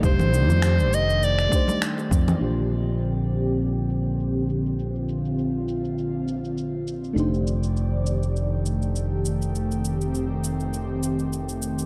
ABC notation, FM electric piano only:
X:1
M:4/4
L:1/8
Q:"Swing 16ths" 1/4=101
K:Bb
V:1 name="FM electric piano"
[A,DEGc]4- [A,DEGc] [A,DEGc]3 | [B,DFGc]8- | [B,DFGc]8 | [A,DEGc]8- |
[A,DEGc]8 |]